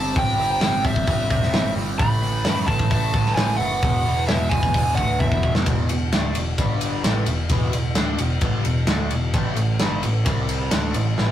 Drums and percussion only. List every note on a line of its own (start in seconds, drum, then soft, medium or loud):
0.16 kick loud
0.16 open hi-hat medium
0.38 open hi-hat medium
0.61 snare loud
0.61 open hi-hat medium
0.85 kick medium
0.85 open hi-hat medium
0.96 kick medium
1.07 kick loud
1.07 open hi-hat medium
1.30 kick medium
1.30 open hi-hat medium
1.43 snare soft
1.54 snare loud
1.54 open hi-hat medium
1.78 open hi-hat medium
1.99 kick loud
1.99 open hi-hat medium
2.23 open hi-hat medium
2.45 snare loud
2.45 open hi-hat medium
2.68 kick medium
2.68 open hi-hat medium
2.79 kick medium
2.91 kick loud
2.91 open hi-hat medium
3.14 kick medium
3.14 open hi-hat medium
3.26 snare soft
3.37 snare loud
3.37 open hi-hat loud
3.60 open hi-hat medium
3.83 kick loud
3.83 open hi-hat medium
4.06 open hi-hat medium
4.28 snare loud
4.28 open hi-hat medium
4.51 kick medium
4.51 open hi-hat medium
4.63 kick medium
4.74 kick loud
4.74 open hi-hat medium
4.97 kick medium
4.97 open hi-hat medium
5.20 kick medium
5.32 kick medium
5.43 kick medium
5.55 snare loud
5.66 kick loud
5.66 ride loud
5.89 ride medium
6.13 snare loud
6.13 ride loud
6.35 ride medium
6.58 kick loud
6.58 ride loud
6.81 ride medium
7.04 snare loud
7.04 ride loud
7.26 ride medium
7.49 kick loud
7.49 ride loud
7.73 ride medium
7.95 snare loud
7.95 ride loud
8.18 ride medium
8.41 kick loud
8.41 ride loud
8.65 ride medium
8.87 snare loud
8.87 ride loud
9.11 ride medium
9.34 kick loud
9.34 ride loud
9.57 ride medium
9.79 snare loud
9.79 ride loud
10.03 ride medium
10.26 kick loud
10.26 ride loud
10.49 ride medium
10.71 snare loud
10.71 ride loud
10.94 ride medium
11.18 snare medium